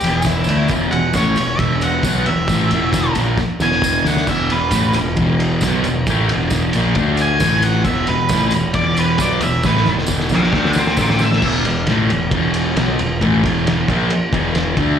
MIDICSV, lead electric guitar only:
0, 0, Header, 1, 2, 480
1, 0, Start_track
1, 0, Tempo, 446761
1, 753, Time_signature, 4, 2, 24, 8
1, 16107, End_track
2, 0, Start_track
2, 0, Title_t, "Lead electric guitar"
2, 0, Program_c, 0, 29
2, 0, Note_on_c, 0, 67, 80
2, 277, Note_off_c, 0, 67, 0
2, 281, Note_on_c, 0, 64, 92
2, 744, Note_off_c, 0, 64, 0
2, 981, Note_on_c, 0, 78, 92
2, 1221, Note_off_c, 0, 78, 0
2, 1249, Note_on_c, 0, 73, 91
2, 1709, Note_off_c, 0, 73, 0
2, 1709, Note_on_c, 0, 76, 90
2, 1946, Note_off_c, 0, 76, 0
2, 1970, Note_on_c, 0, 78, 85
2, 2431, Note_off_c, 0, 78, 0
2, 2437, Note_on_c, 0, 76, 94
2, 3371, Note_off_c, 0, 76, 0
2, 3894, Note_on_c, 0, 80, 111
2, 4354, Note_off_c, 0, 80, 0
2, 4378, Note_on_c, 0, 78, 88
2, 4604, Note_off_c, 0, 78, 0
2, 4613, Note_on_c, 0, 76, 85
2, 4841, Note_off_c, 0, 76, 0
2, 4855, Note_on_c, 0, 71, 91
2, 5315, Note_off_c, 0, 71, 0
2, 7753, Note_on_c, 0, 80, 119
2, 8202, Note_on_c, 0, 78, 108
2, 8204, Note_off_c, 0, 80, 0
2, 8423, Note_off_c, 0, 78, 0
2, 8427, Note_on_c, 0, 76, 88
2, 8667, Note_off_c, 0, 76, 0
2, 8685, Note_on_c, 0, 71, 106
2, 9149, Note_off_c, 0, 71, 0
2, 9399, Note_on_c, 0, 74, 104
2, 9633, Note_off_c, 0, 74, 0
2, 9669, Note_on_c, 0, 71, 94
2, 9888, Note_off_c, 0, 71, 0
2, 9901, Note_on_c, 0, 74, 96
2, 10110, Note_on_c, 0, 76, 91
2, 10124, Note_off_c, 0, 74, 0
2, 10348, Note_off_c, 0, 76, 0
2, 10373, Note_on_c, 0, 71, 99
2, 10599, Note_off_c, 0, 71, 0
2, 11119, Note_on_c, 0, 76, 74
2, 11126, Note_on_c, 0, 79, 82
2, 11316, Note_off_c, 0, 76, 0
2, 11322, Note_off_c, 0, 79, 0
2, 11329, Note_on_c, 0, 76, 77
2, 11335, Note_on_c, 0, 79, 90
2, 11547, Note_off_c, 0, 76, 0
2, 11560, Note_off_c, 0, 79, 0
2, 11575, Note_on_c, 0, 67, 79
2, 11592, Note_on_c, 0, 76, 92
2, 11790, Note_off_c, 0, 67, 0
2, 11808, Note_off_c, 0, 76, 0
2, 11825, Note_on_c, 0, 67, 76
2, 11842, Note_on_c, 0, 76, 83
2, 12035, Note_off_c, 0, 67, 0
2, 12053, Note_off_c, 0, 76, 0
2, 12070, Note_on_c, 0, 76, 106
2, 12286, Note_off_c, 0, 76, 0
2, 16107, End_track
0, 0, End_of_file